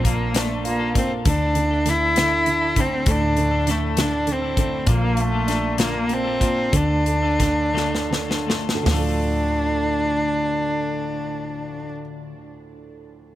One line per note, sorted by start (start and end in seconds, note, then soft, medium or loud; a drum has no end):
0.00 1.22 A#1 medium
0.00 0.92 A#2 medium
0.00 1.22 F3 medium
0.00 0.96 A#3 soft
0.00 0.33 A#3 medium
0.00 0.35 D4 soft
0.00 0.05 F4 medium
0.04 0.39 A#3 medium
0.04 0.34 D4 medium
0.04 0.64 F4 soft
0.04 0.34 F4 medium
0.04 0.35 A4 medium
0.04 kick medium
0.04 closed hi-hat medium
0.34 0.66 A3 medium
0.34 0.50 A#3 medium
0.34 1.23 D4 soft
0.34 0.50 D4 medium
0.34 0.49 F4 medium
0.34 0.48 A4 medium
0.34 snare medium
0.34 closed hi-hat medium
0.49 0.81 D4 soft
0.49 0.80 F4 soft
0.49 0.78 A4 soft
0.65 0.94 A#3 medium
0.65 1.24 F4 soft
0.65 closed hi-hat soft
0.79 0.95 D4 soft
0.79 0.96 F4 soft
0.79 0.95 A4 soft
0.95 1.25 A#3 soft
0.95 1.11 C4 medium
0.95 1.25 D4 medium
0.95 1.26 F4 medium
0.95 1.26 A4 medium
0.95 kick medium
0.95 closed hi-hat medium
1.25 3.03 D2 medium
1.25 1.41 D3 medium
1.25 1.54 D3 medium
1.25 1.41 A3 medium
1.25 1.41 D4 medium
1.25 1.91 D4 medium
1.25 1.41 E4 medium
1.25 1.39 A4 medium
1.25 kick loud
1.25 closed hi-hat medium
1.40 1.73 D4 soft
1.40 1.71 E4 soft
1.40 1.70 A4 soft
1.55 1.84 D3 soft
1.55 closed hi-hat soft
1.71 1.86 D4 soft
1.71 1.87 E4 soft
1.71 1.86 A4 soft
1.86 2.15 D3 soft
1.86 2.17 A3 medium
1.86 2.17 D4 medium
1.86 2.18 E4 medium
1.86 2.82 E4 medium
1.86 2.18 A4 medium
1.86 snare soft
1.86 closed hi-hat medium
2.16 2.45 D3 soft
2.16 2.32 D3 medium
2.16 2.32 A3 medium
2.16 2.32 D4 medium
2.16 2.32 E4 medium
2.16 2.30 A4 medium
2.16 snare medium
2.16 closed hi-hat medium
2.31 2.63 D4 soft
2.31 2.62 E4 soft
2.31 2.60 A4 soft
2.46 2.75 D3 soft
2.46 closed hi-hat medium
2.61 2.76 D4 soft
2.61 2.78 E4 soft
2.61 2.77 A4 soft
2.76 3.36 D3 medium
2.76 3.06 A3 medium
2.76 3.12 C4 medium
2.76 3.07 D4 soft
2.76 3.07 E4 medium
2.76 3.08 A4 medium
2.76 kick medium
2.76 closed hi-hat medium
3.06 4.83 D2 loud
3.06 4.83 A2 medium
3.06 3.22 D3 medium
3.06 3.22 A3 medium
3.06 3.23 D4 medium
3.06 3.22 E4 medium
3.06 3.20 A4 medium
3.06 kick loud
3.06 closed hi-hat medium
3.11 3.72 D4 medium
3.21 3.53 D4 soft
3.21 3.52 E4 soft
3.21 3.50 A4 soft
3.37 3.66 D3 soft
3.37 closed hi-hat soft
3.51 3.66 D4 soft
3.51 3.67 E4 soft
3.51 3.67 A4 medium
3.66 3.96 D3 soft
3.66 3.96 A3 medium
3.66 3.97 D4 medium
3.66 3.97 E4 medium
3.66 3.98 A4 medium
3.66 snare soft
3.66 closed hi-hat medium
3.71 4.02 A3 medium
3.97 4.12 D3 medium
3.97 4.26 D3 soft
3.97 4.12 A3 medium
3.97 4.13 D4 medium
3.97 4.34 D4 medium
3.97 4.12 E4 medium
3.97 4.10 A4 medium
3.97 snare medium
3.97 closed hi-hat medium
4.11 4.43 D4 soft
4.11 4.42 E4 soft
4.11 4.41 A4 soft
4.27 4.56 D3 soft
4.27 closed hi-hat soft
4.32 4.90 C4 medium
4.42 4.57 D4 soft
4.42 4.58 E4 soft
4.42 4.57 A4 medium
4.57 4.86 D3 medium
4.57 4.87 A3 medium
4.57 4.87 D4 medium
4.57 4.88 E4 medium
4.57 4.88 A4 medium
4.57 kick medium
4.57 closed hi-hat medium
4.87 6.69 A#1 loud
4.87 6.69 A#2 medium
4.87 5.02 A#2 medium
4.87 5.02 D3 medium
4.87 5.03 A#3 medium
4.87 5.02 D4 medium
4.87 5.01 F4 medium
4.87 5.00 A4 medium
4.87 kick loud
4.87 closed hi-hat medium
4.91 5.22 A#3 medium
5.01 5.33 A#3 soft
5.01 5.33 D4 soft
5.01 5.32 F4 soft
5.01 5.31 A4 medium
5.17 5.80 A3 medium
5.17 5.77 F4 soft
5.17 closed hi-hat soft
5.32 5.49 A#3 soft
5.32 5.47 D4 soft
5.32 5.48 F4 soft
5.32 5.47 A4 medium
5.48 6.69 D4 medium
5.48 5.77 D4 medium
5.48 5.78 F4 medium
5.48 5.78 A4 medium
5.48 snare soft
5.48 closed hi-hat medium
5.78 5.93 A#2 medium
5.78 5.94 D3 medium
5.78 5.94 A#3 medium
5.78 5.94 D4 medium
5.78 6.40 F4 soft
5.78 5.93 F4 medium
5.78 5.91 A4 medium
5.78 snare medium
5.78 closed hi-hat medium
5.82 6.15 A#3 medium
5.93 6.26 A#3 soft
5.93 6.25 D4 soft
5.93 6.24 F4 soft
5.93 6.23 A4 soft
6.09 6.71 A#3 soft
6.09 closed hi-hat soft
6.14 6.78 C4 medium
6.24 6.39 A#3 soft
6.24 6.40 D4 soft
6.24 6.41 F4 soft
6.24 6.41 A4 soft
6.40 6.72 A#3 medium
6.40 6.72 D4 medium
6.40 6.72 F4 medium
6.40 6.73 F4 medium
6.40 6.73 A4 medium
6.40 kick medium
6.40 closed hi-hat medium
6.72 8.83 D2 medium
6.72 6.89 D3 medium
6.72 7.38 D3 medium
6.72 6.89 A3 medium
6.72 6.90 D4 medium
6.72 6.89 F4 medium
6.72 6.87 A4 medium
6.72 kick loud
6.72 closed hi-hat medium
6.76 8.50 D4 medium
6.88 7.24 D4 soft
6.88 7.23 F4 soft
6.88 7.21 A4 medium
7.05 7.73 A3 medium
7.05 closed hi-hat medium
7.22 7.39 D4 soft
7.22 7.40 F4 soft
7.22 7.40 A4 soft
7.39 8.09 D3 soft
7.39 7.73 A3 medium
7.39 7.73 D4 medium
7.39 7.74 F4 medium
7.39 7.74 A4 medium
7.39 kick medium
7.39 snare soft
7.39 closed hi-hat medium
7.73 7.92 D3 medium
7.73 7.93 A3 medium
7.73 8.47 A3 soft
7.73 7.93 D4 medium
7.73 7.92 F4 loud
7.73 7.90 A4 medium
7.73 snare soft
7.91 8.30 D4 soft
7.91 8.29 F4 soft
7.91 8.27 A4 soft
7.91 snare medium
8.11 8.84 D3 soft
8.11 snare medium
8.28 8.47 D4 soft
8.28 8.48 F4 soft
8.28 8.47 A4 soft
8.28 snare medium
8.47 8.85 A3 medium
8.47 8.87 D4 medium
8.47 8.87 F4 medium
8.47 8.88 A4 medium
8.47 snare medium
8.69 snare medium
8.75 11.76 D2 medium
8.83 11.88 D2 medium
8.83 11.84 A2 medium
8.83 12.33 D3 medium
8.83 12.36 A3 medium
8.83 floor tom medium
8.83 open hi-hat medium
8.88 11.92 F3 soft
8.88 12.39 D4 medium
8.88 11.90 D4 medium
8.88 12.41 F4 medium
8.88 snare medium
8.94 12.44 A4 medium
8.98 12.00 A3 medium